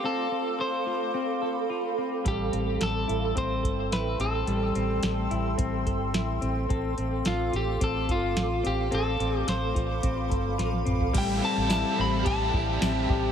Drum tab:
CC |----------------|----------------|----------------|----------------|
RD |----------------|----------------|----------------|----------------|
HH |----------------|x-x-x-x-x-x-x-x-|x-x-x-x-x-x-x-x-|x-x-x-x-x-x-x-x-|
TB |----------------|----------------|----------------|----------------|
SD |----------------|----o-------o---|----o-------o---|----o-------o---|
T1 |----------------|----------------|----------------|----------------|
T2 |----------------|----------------|----------------|----------------|
FT |----------------|----------------|----------------|----------------|
BD |----------------|o-------o-o-----|--------o-o-----|o-------o-o-----|

CC |----------------|x---------------|
RD |----------------|x---x---x---x---|
HH |x-x-x-x-x-x-x-x-|----------------|
TB |----------------|----x-------x---|
SD |----o-------o---|----o-------o---|
T1 |-------------o--|----------------|
T2 |--------------o-|----------------|
FT |---------------o|----------------|
BD |------o-o-o-----|o-------o-o---o-|